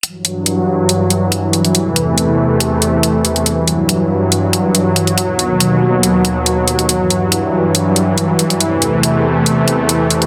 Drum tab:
HH |x-x-x---x-x-x-xx|x-x-x---x-x-x-xx|x-x-x---x-x-x-xx|x-x-x---x-x-x-xx|

HH |x-x-x---x-x-x-xx|x-x-x---x-x-x-xx|